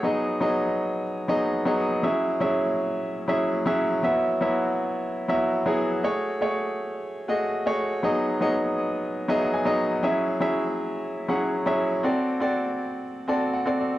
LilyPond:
\new Staff \with { instrumentName = "Grand piano" } { \time 4/4 \key cis \minor \tempo 4 = 120 << { r1 | r1 | r1 | r1 |
r2 r8 e''16 fis''16 gis''4 | r1 | r2 r8 a''8 fis''8 d''8 | } \\ { <fis b dis' gis' dis''>8 r16 <fis b dis' gis' dis''>4~ <fis b dis' gis' dis''>16 r8 <fis b dis' gis' dis''>8 r16 <fis b dis' gis' dis''>8 r16 | <fis cis' e' gis' e''>8 r16 <fis cis' e' gis' e''>4~ <fis cis' e' gis' e''>16 r8 <fis cis' e' gis' e''>8 r16 <fis cis' e' gis' e''>8 r16 | <fis b e' fis' e''>8 r16 <fis b e' fis' e''>4~ <fis b e' fis' e''>16 r8 <fis b e' fis' e''>8 r16 <fis b e' fis' gis'>8 r16 | <a fis' gis' cis''>8 r16 <a fis' gis' cis''>4~ <a fis' gis' cis''>16 r8 <a fis' gis' dis''>8 r16 <a fis' gis' cis''>8 r16 |
<fis b dis' gis' dis''>8 r16 <fis b dis' gis' dis''>4~ <fis b dis' gis' dis''>16 r8 <fis b dis' gis' dis''>8 r16 <fis b dis' gis' dis''>8 r16 | <fis cis' e' gis' e''>8 r16 <fis cis' e' gis' e''>4~ <fis cis' e' gis' e''>16 r8 <fis cis' e' gis' fis''>8 r16 <fis cis' e' gis' e''>8 r16 | <c' fis' a' d''>8 r16 <c' fis' a' d''>4~ <c' fis' a' d''>16 r8 <c' fis' a' d''>8 r16 <c' fis' a' d''>8 r16 | } >> }